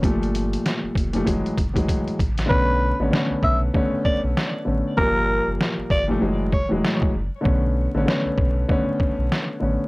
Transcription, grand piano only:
0.02 A#2 F3 G3 A3
1.13 A#2 F3 G3 A3
1.24 A2 E3 F#3 G#3
1.74 A2 E3 F#3 G#3
2.46 D3 A3 B3 C#4
3.00 D3 A3 B3 C#4
3.10 D3 A3 B3 C#4
3.74 D3 A3 B3 C#4
4.65 D3 A3 B3 C#4
4.97 A#2 F3 G3 A#3
6.08 A#2 F3 G3 A3
6.19 A2 E3 F#3 G#3
6.69 A2 E3 F#3 G#3
7.41 D3 A3 B3 C#4
7.94 D3 A3 B3 C#4
8.06 D3 A3 B3 C#4
8.68 D3 A3 B3 C#4
9.60 D3 A3 B3 C#4

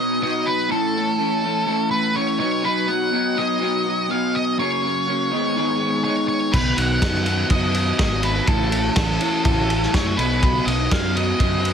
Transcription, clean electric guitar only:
Already playing: B2 B3 D#4
0.00 F#3
0.20 B2 F#3 B3 D#4
0.69 A2 E3 A3 C#4 E4
0.93 A3 C#4 E4
1.17 E3 A3 C#4 E4
1.42 A3 C#4 E4
1.65 A2 E3 A3 C#4 E4
1.90 A3 C#4 E4
2.13 E3 A3 C#4 E4
2.38 B2 F#3 B3 D#4
2.62 B2 F#3 B3 D#4
2.87 F#3 B3 D#4
3.10 B2 F#3 B3 D#4
3.35 F#3 B3 D#4
3.60 B2 F#3 B3 D#4
3.84 F#3 B3 D#4
4.08 B2 F#3 B3 D#4
4.57 F#2 C#3 F#3 A#3 C#4
4.82 F#3 A#3 C#4
5.06 C#3 F#3 A#3 C#4
5.31 G#2 D#3 G#3 B3 D#4
5.55 G#2 D#3 G#3 B3 D#4
5.79 G#3 B3 D#4
6.04 D#3 G#3 B3 D#4
6.52 B2 D#3 F#3 B3 D#4
6.77 F#3 B3 D#4
7.02 D#3 F#3 B3 D#4
7.25 F#3 B3 D#4
7.50 B2 D#3 F#3 B3 D#4
7.75 F#3 B3 D#4
7.99 D#3 F#3 B3 D#4
8.47 A2 E3 A3 C#4 E4
8.71 A3 C#4 E4
8.96 E3 A3 C#4 E4
9.20 A3 C#4 E4
9.44 A2 E3 A3 C#4 E4
9.68 A3 C#4 E4
9.93 E3 A3 C#4 E4
10.17 B2 F#3 B3 D#4
10.40 B2 F#3 B3 D#4
10.66 F#3 B3 D#4
10.90 B2 F#3 B3 D#4
11.14 F#3 B3 D#4
11.38 B2 F#3 B3 D#4
11.63 F#3 B3 D#4

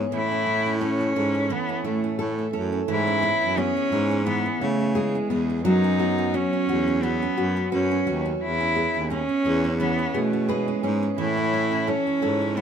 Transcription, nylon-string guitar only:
Already playing: B3 G#4 C#5
0.46 E4
0.81 C#4
1.16 E4
1.50 C#4
1.84 E4
2.19 A4
2.53 C#4
3.23 E4
3.58 B3
3.92 E4
4.27 B3
4.61 E4
4.95 G#4
5.30 B3
5.65 F#3
5.99 F#4
6.34 C#4
6.69 F#4
7.03 C#4
7.37 F#4
7.72 B4
8.07 C#4
8.76 G#4
9.11 C#4
9.46 G#4
9.81 C#4
10.14 G#4
10.49 B4
10.84 C#4
11.53 E4
11.88 C#4
12.23 E4
12.57 C#4

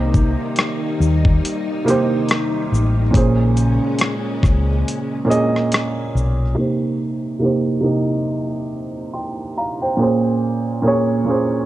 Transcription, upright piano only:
Already playing: C3 A#3 D#4 G4 C5
1.85 C3 A#3 D#4
1.89 G4 C5
3.11 A#2 A#3 C#4
3.15 G#4 C5
5.25 A#2 A#3 C#4
5.29 G#4 D#5
6.55 C3 A#3 D#4
6.59 G4 C5
7.39 C3 A#3 D#4
7.44 G4 C5
7.80 C3 A#3 D#4
7.85 G4 D#5
9.13 G5 C6
9.57 F5 A#5
9.82 C5 G5
9.97 A#2 A#3 C#4
10.01 G#4 C5
10.82 A#2 A#3 C#4
10.86 G#4 C#5
11.25 A#2 A#3 C#4
11.29 G#4 C5

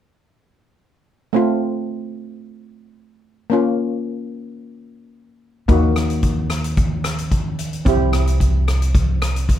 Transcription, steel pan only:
1.33 A3 C4 F4
3.50 A#3 C#4 F4
5.68 A#3 D#4 F#4
7.85 C4 E4 G4

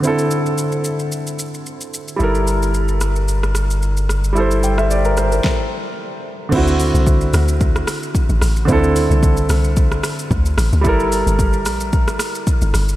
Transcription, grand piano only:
0.00 D3 C4
0.05 E4 A4
2.16 G3 E4
2.21 A4 A#4
4.33 G3 E4
4.37 A4 C5
4.64 G5
4.78 E5
4.91 D5
5.05 A#4
5.18 C5
5.32 A#4
6.49 D3 C4
6.54 E4 F#4
8.65 D3 C4
8.70 E4 A4
10.81 G3 E4
10.86 A4 A#4

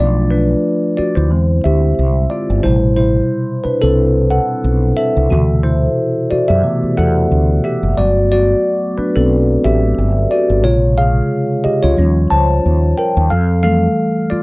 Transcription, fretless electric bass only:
0.00 B1
0.99 muted fretless electric bass stroke
1.17 D2
1.32 E2
1.65 D2
1.99 C2
2.50 G1
2.65 A1
3.65 muted fretless electric bass stroke
3.83 C2
4.64 B1
5.17 C2
5.32 D2
6.32 muted fretless electric bass stroke
6.50 F#2
6.83 muted fretless electric bass stroke
6.99 E2
7.32 D2
7.83 F#1
7.98 G1
8.98 muted fretless electric bass stroke
9.17 B1
9.65 A1
9.98 G1
10.50 G1
10.65 A#1
11.66 muted fretless electric bass stroke
11.84 C#2
11.99 D#2
12.32 C#2
12.66 D#2
13.17 D#2
13.32 F2
14.32 muted fretless electric bass stroke

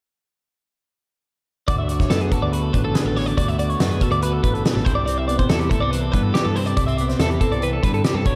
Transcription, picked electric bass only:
1.68 D2
2.11 F#2
2.42 D2
2.74 A1
3.05 A1
3.38 D2
3.80 F#2
4.11 D2
4.44 A1
4.75 A1
4.86 C2
5.50 E2
5.81 C2
6.13 G2
6.45 G2
6.77 C2
7.19 E2
7.51 C2
7.84 G2
8.14 G2
8.26 B1

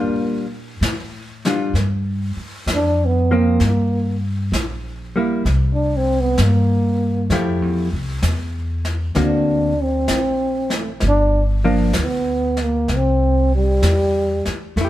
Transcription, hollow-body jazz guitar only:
Already playing: G3 D4 F4
1.46 G3 D4 F4
3.31 F3 A#3 C4
5.16 G3 A#3 E4
7.32 F3 A3 E4 G4
9.16 D3 A#3 C4 F#4
11.64 F3 A#3 D4
14.77 A3 E4
14.85 G4

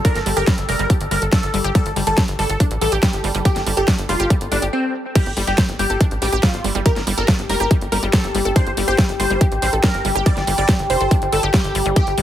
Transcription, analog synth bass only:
0.15 G1
0.26 G1
0.37 G1
0.58 G1
0.69 F1
0.79 G1
1.01 G1
1.11 G1
1.22 G1
1.43 G1
1.54 G1
1.64 G1
1.86 G1
1.96 G1
2.07 G1
2.28 G1
2.39 G1
2.49 G1
2.71 A1
2.81 A1
2.92 A1
3.13 G1
3.24 G1
3.35 G1
3.56 G1
3.67 G1
3.77 G1
3.98 G1
4.09 F1
4.20 G1
4.41 G1
4.52 G1
4.62 G1
5.26 G1
5.37 G1
5.47 G1
5.69 G1
5.79 G1
5.90 G1
6.11 A1
6.22 A1
6.33 A1
6.54 G1
6.64 G1
6.75 G1
6.96 G1
7.07 G1
7.18 G1
7.39 G1
7.49 F1
7.60 G1
7.81 G1
7.92 G1
8.03 G1
8.24 G1
8.35 G1
8.45 G1
8.67 G1
8.77 G1
8.88 G1
9.09 G1
9.20 G1
9.30 G1
9.52 A1
9.62 A1
9.73 A1
9.94 G1
10.05 G1
10.15 G1
10.37 G1
10.47 G1
10.58 G1
10.79 G1
10.90 F1
11.01 G1
11.22 G1
11.32 G1
11.43 G1
11.64 G1
11.75 G1
11.86 G1
12.07 G1
12.18 G1

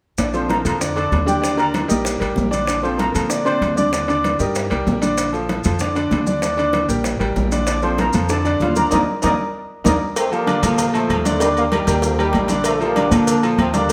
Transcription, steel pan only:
0.19 D4 D5
0.34 C4 C5
0.49 A#4 A#5
0.65 A#4 A#5
0.97 A4 A5
1.26 G4 G5
1.58 A#4 A#5
1.89 D#4 D#5
2.66 D4 D5
2.83 C4 C5
2.98 A#4 A#5
3.12 A#4 A#5
3.45 C4 C5
3.76 D4 D5
4.08 D4 D5
4.40 D#4 D#5
7.68 D4 D5
7.83 C4 C5
7.99 A#4 A#5
8.30 A4 A5
8.62 F4 F5
8.77 A#4 A#5
8.92 A#4 D5 D#5
9.24 A#4 D5 D#5
9.86 A#4 D5 D#5

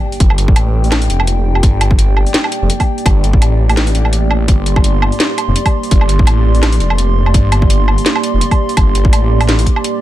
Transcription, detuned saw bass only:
0.20 G1
0.48 A1
1.10 F1
1.63 G1
2.62 F1
3.06 G1
3.33 A1
3.95 A1
4.48 G1
5.48 F1
5.91 G1
6.19 A1
6.81 F1
7.34 G1
8.34 F1
8.77 G1
9.05 A1

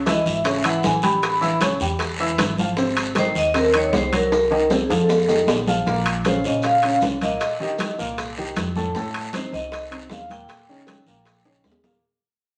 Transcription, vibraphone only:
0.10 D#5
0.29 E5
0.66 F#5
0.85 G#5
1.03 B5
3.19 C5
3.38 D#5
3.58 A#4
3.77 C#5
3.96 C5
4.16 A#4
4.84 G#4
4.92 A4
6.27 C5
6.46 D#5
6.65 F5
7.23 D#5
9.34 C5
9.54 D#5
10.12 F5
10.31 G5

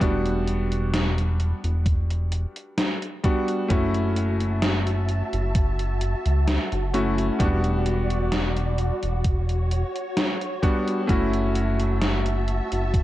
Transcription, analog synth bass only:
0.01 E1
1.64 E1
3.70 F#1
5.33 F#1
6.26 C#2
6.72 F#1
7.40 E1
9.03 E1
11.09 F#1
12.72 F#1

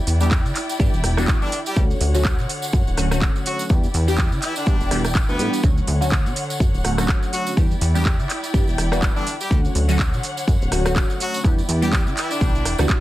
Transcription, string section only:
Already playing: E4 D5 G5
1.76 D3 C#5 F#5
3.70 E4 D5 G5
5.63 D3 C#5 F#5
7.57 E4 D5 G5
9.51 D3 C#5 F#5
11.44 E4 D5 G5

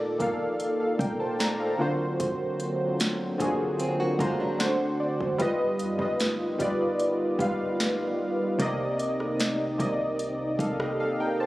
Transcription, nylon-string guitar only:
3.80 C4 G#4
4.00 A#3 F#4
4.20 G#3 F4
4.40 F#3 D4

